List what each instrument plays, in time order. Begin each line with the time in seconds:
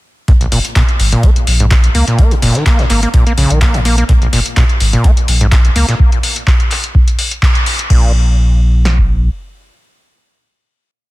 0.28 sub bass A#1, acid bass A#2, kick, closed hi-hat
0.41 acid bass A#1, closed hi-hat
0.52 sub bass F1, acid bass A#2, closed hi-hat, open hi-hat
0.65 closed hi-hat
0.76 acid bass A#2, kick, snare, clap, closed hi-hat
0.89 closed hi-hat
1.00 sub bass G#1, open hi-hat
1.12 acid bass A#2, closed hi-hat
1.23 sub bass A#1, acid bass A#3, kick, closed hi-hat
1.36 closed hi-hat
1.47 sub bass A#1, closed hi-hat, open hi-hat
1.60 acid bass G#2, closed hi-hat
1.71 acid bass A#2, kick, snare, clap, closed hi-hat
1.84 closed hi-hat
1.95 sub bass C#2, acid bass A#3, closed hi-hat, open hi-hat
2.08 acid bass A#2, snare, closed hi-hat
2.19 acid bass A#3, kick, closed hi-hat
2.31 acid bass A#2, closed hi-hat
2.42 sub bass F1, acid bass A#2, closed hi-hat, open hi-hat
2.55 acid bass D#3, snare, closed hi-hat
2.66 acid bass A#3, kick, snare, clap, closed hi-hat
2.79 acid bass G#2, snare, closed hi-hat
2.90 sub bass G#1, acid bass A#3, clap, closed hi-hat, open hi-hat
3.03 acid bass A#3, closed hi-hat
3.14 acid bass A#2, kick, closed hi-hat
3.27 acid bass A#3, closed hi-hat
3.37 sub bass A#1, acid bass C#3, closed hi-hat, open hi-hat
3.50 sub bass A#1, acid bass D#3, closed hi-hat
3.61 acid bass A#3, kick, snare, clap, closed hi-hat
3.74 acid bass G#2, closed hi-hat
3.85 acid bass A#3, closed hi-hat, open hi-hat
3.98 acid bass A#3, closed hi-hat
4.09 sub bass A#1, acid bass A#2, kick, closed hi-hat
4.22 acid bass A#1, closed hi-hat
4.33 sub bass F1, acid bass A#2, closed hi-hat, open hi-hat
4.46 closed hi-hat
4.57 acid bass A#2, kick, snare, clap, closed hi-hat
4.69 closed hi-hat
4.80 sub bass G#1, open hi-hat
4.93 acid bass A#2, closed hi-hat
5.04 sub bass A#1, acid bass A#3, kick, closed hi-hat
5.17 closed hi-hat
5.28 sub bass A#1, closed hi-hat, open hi-hat
5.41 acid bass G#2, closed hi-hat
5.52 acid bass A#2, kick, snare, clap, closed hi-hat
5.65 closed hi-hat
5.76 sub bass C#2, acid bass A#3, closed hi-hat, open hi-hat
5.88 acid bass A#2, snare, closed hi-hat
6.00 kick
6.12 closed hi-hat
6.23 open hi-hat
6.36 closed hi-hat
6.47 kick, clap
6.60 closed hi-hat
6.71 clap, open hi-hat
6.84 closed hi-hat
6.95 kick
7.08 closed hi-hat
7.19 open hi-hat
7.31 closed hi-hat
7.42 kick, clap
7.55 closed hi-hat
7.66 open hi-hat
7.79 closed hi-hat
7.90 sub bass A#1, acid bass A#2, kick, crash
8.85 snare
8.98 kick